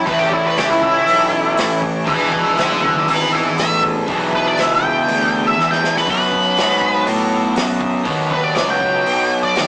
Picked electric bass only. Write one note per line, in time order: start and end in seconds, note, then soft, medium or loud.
0.08 0.56 E2 medium
0.58 1.06 C#2 medium
1.08 1.57 B1 medium
1.58 2.07 A1 medium
2.07 2.56 E1 medium
2.58 3.06 F#1 medium
3.09 3.57 G#1 medium
3.58 4.06 A1 medium
4.08 4.56 B1 medium
4.58 5.06 C#2 medium
5.08 5.56 D2 medium
5.57 6.06 E2 medium
6.08 6.56 F#2 medium
6.58 7.06 G#2 medium
7.07 7.55 A2 medium
7.56 8.05 F#2 loud
8.06 8.54 D#2 medium
8.56 9.04 C#2 medium
9.06 9.54 B1 medium
9.57 9.67 D#2 medium